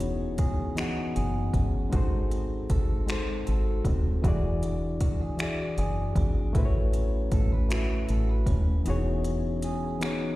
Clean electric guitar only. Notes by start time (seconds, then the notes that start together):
Already playing: E3
0.00 C#4
0.38 G#4
0.77 D#4
1.16 G#4
1.54 C#4
1.93 G#3
2.31 C4
2.70 A4
3.08 F#4
3.47 A4
3.84 C4
4.24 E3
4.63 D4
5.01 F#4
5.21 G#4
5.40 E4
5.60 F#4
5.79 G#4
6.17 D4
6.56 A3
6.94 C#4
7.34 A4
7.52 B4
7.71 F#4
8.10 A4
8.29 B4
8.47 C#4
8.86 E3
9.25 C#4
9.64 G#4
10.01 D#4